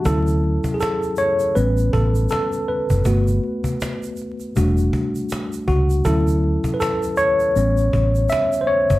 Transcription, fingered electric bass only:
X:1
M:4/4
L:1/16
Q:"Swing 16ths" 1/4=80
K:D
V:1 name="Fingered electric bass" clef=bass
D,,3 z4 z A,,,2 A,,,2 z3 F,,, | G,,,2 z6 E,,,2 z4 C,,2 | D,,3 z4 z A,,,2 A,,,2 z3 F,,, |]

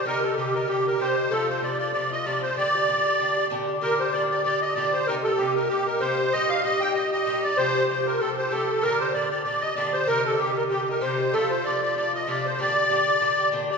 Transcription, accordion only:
X:1
M:4/4
L:1/8
Q:"Swing" 1/4=192
K:Gm
V:1 name="Accordion"
B A G B G B c2 | A c d d d e d c | d6 z2 | B c d d d e d c |
B A G B G B c2 | e f e g e e2 d | c2 c B A c A2 | B c d d d e d c |
B A G B G B c2 | A c d d d e d c | d6 z d |]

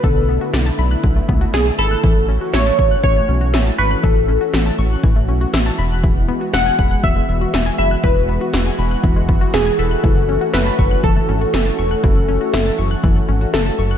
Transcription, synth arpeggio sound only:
X:1
M:4/4
L:1/16
Q:1/4=120
K:Emix
V:1 name="Synth arpeggio sound"
D, z B, F d a b f' D, A, B, F d a b f' | E, z C F e a c' f' E, A, C F e a c' f' | E, z C F e a c' f' E, A, C F e a b f' | E, z B, F e g b f' E, G, B, F e g b f' |
E, z B, F e g b f' E, G, B, F e g b f' | E, z C F e a c' f' E, A, C F e a c' f' | E, z C F e a c' f' E, A, C F e a c' f' |]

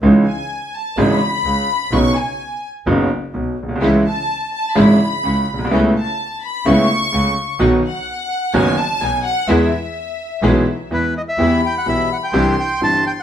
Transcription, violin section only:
X:1
M:4/4
L:1/8
Q:1/4=127
K:E
V:1 name="Violin section"
z g2 a b4 | c' g2 z4 z | z a2 a b4 | z a2 b c'4 |
z f3 g a g f | e6 z2 | [K:Em] b4 c'4 |]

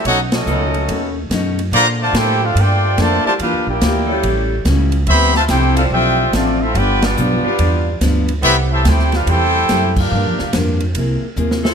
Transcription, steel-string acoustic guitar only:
X:1
M:4/4
L:1/8
Q:"Swing" 1/4=143
K:C
V:1 name="Steel-string acoustic guitar"
[B,,A,^C^D] z [B,,A,CD] z [B,,A,CD] z [B,,A,CD] z | [_B,DAc] z [B,DAc] z [B,DAc] z [B,DAc] z | [E,_B,DG] z [E,B,DG] z [A,,G,^CE] z [A,,G,CE] z | [D,F,CE] z [D,F,CE] z [D,F,CE] z [D,F,CE] z |
[G,,F,B,D] z [G,,F,B,D] z [G,,F,B,D] z [G,,F,B,D] z | [C,G,A,E] z [C,G,A,E] z [C,G,A,E] z [C,G,A,E] z | [G,,F,_B,D] z [G,,F,B,D] z [C,B,E^G] z [C,B,EG] z |]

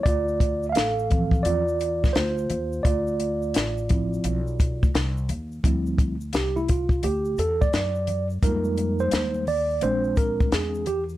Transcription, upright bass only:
X:1
M:4/4
L:1/8
Q:"Swing 16ths" 1/4=86
K:Ddor
V:1 name="Upright bass" clef=bass
D,,2 A,,,2 E,,2 D,, _E,, | D,,2 A,,,2 B,,,2 C,, _E,, | [K:Fmix] D,,2 C,,2 D,, =E,, ^F,,2 | F,,2 E,,2 B,,,2 =E,,2 |]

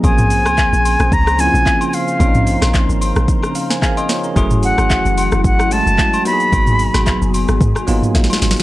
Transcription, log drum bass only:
X:1
M:4/4
L:1/16
Q:"Swing 16ths" 1/4=111
K:Abdor
V:1 name="Log drum bass" clef=bass
B,,,3 D,,2 B,,,2 B,,, D,,3 B,,, z4 | B,,,3 B,,,2 A,,,2 B,,, z8 | G,,,3 A,,,2 G,,,2 G,,, A,,,3 G,,, z4 | A,,,3 A,,,2 G,,,2 A,,, A,, z A,,, z B,,, z A,,, z |]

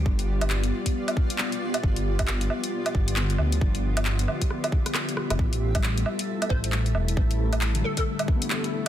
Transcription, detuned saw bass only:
X:1
M:4/4
L:1/16
Q:"Swing 16ths" 1/4=135
K:Gmix
V:1 name="Detuned saw bass" clef=bass
G,,,6 z8 z2 | G,,,6 z4 G,,,4 D,,2 | G,,,6 z8 z F,,, | A,,,6 z4 A,,,4 E,,,2 |
A,,,6 z8 z2 |]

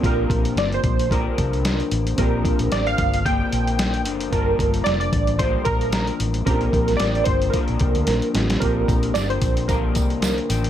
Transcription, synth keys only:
X:1
M:4/4
L:1/16
Q:"Swing 16ths" 1/4=112
K:Bb
V:1 name="Synth keys"
B4 d c3 B6 z2 | B4 d f3 g6 z2 | B4 d d3 c2 B4 z2 | B4 d2 c2 B6 z2 |
B4 d c3 B6 z2 |]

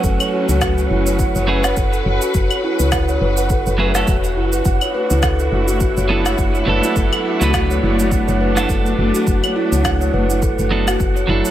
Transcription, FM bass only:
X:1
M:4/4
L:1/16
Q:"Swing 16ths" 1/4=104
K:Dlyd
V:1 name="FM bass" clef=bass
F,,, z2 C,,3 F,,,3 F,,,3 F,,,2 F,,, z | F,,, z2 C,,3 F,,,3 F,,,3 E,,,2 F,,,2 | F,,, z2 C,,3 F,,,3 F,,,3 F,,,2 F,,, z | F,,, z2 C,,3 F,,,3 F,,,3 F,,,2 F,,, z |
F,,, z2 C,,3 F,,,3 F,,,3 F,,,2 F,,, z |]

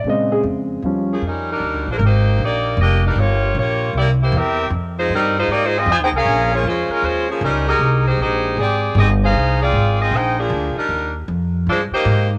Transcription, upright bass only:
X:1
M:4/4
L:1/8
Q:"Swing" 1/4=155
K:Ebmix
V:1 name="Upright bass" clef=bass
B,,2 F,,2 E,,2 F,,2 | [K:Eb] (3E,, D,, B,,, A,,,2 B,,,2 F,,,2 | G,,,2 B,,,2 C,,2 =E,,2 | F,,2 G,,2 A,,2 (3F,, E,, C,, |
B,,,2 F,, z E,,2 _D,,2 | C,,2 B,,,2 A,,,2 G,,,2 | C,,2 A,,,2 B,,,2 D,, z | E,,2 F,,2 G,, z A,,2 |]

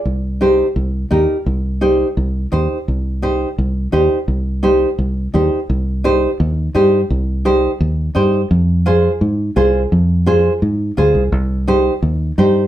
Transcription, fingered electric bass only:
X:1
M:4/4
L:1/8
Q:1/4=170
K:Cm
V:1 name="Fingered electric bass" clef=bass
C,,4 C,,2 E,, z | C,,4 C,,2 E,, z | C,,4 C,,2 E,, z | C,,4 C,,2 E,, z |
C,,4 E,,2 G,,2 | C,,4 E,,2 G,,2 | F,,4 A,,2 C,,2 | F,,4 A,,2 D,, C,, |
C,,4 E,,2 G,,2 |]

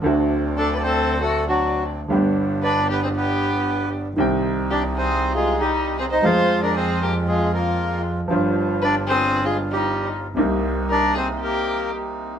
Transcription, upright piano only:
X:1
M:4/4
L:1/8
Q:1/4=116
K:Cm
V:1 name="Upright piano" clef=bass
[D,,D,=A,C^F]8 | [G,,,G,,D,G,=B,G]8 | [C,,C,E,Cg]8 | [F,,F,A,CA]8 |
[G,,,G,,F,G,F]8 | [C,,C,G,B,E]8 |]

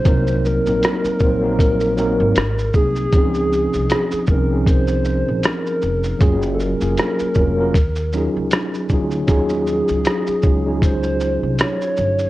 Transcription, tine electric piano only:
X:1
M:4/4
L:1/16
Q:"Swing 16ths" 1/4=78
K:Ebdor
V:1 name="Tine electric piano"
[G,B,CEB]2 z [G,B,CEB]2 z [G,B,CEc] [G,B,CEB]2 z [G,B,CEB]2 z2 [G,B,CEA] z | [F,CDEA]4 z2 [F,CDEB] [F,CDEA]4- [F,CDEA] z4 | [G,B,DFA]2 z [G,B,DFA]2 z [G,B,DFB] [G,B,DFB] z2 [G,DEFA]3 z [G,DEFA] z | [G,DEFA]4 z2 [G,DEFA] [G,DEFA]4- [G,DEFA] z4 |]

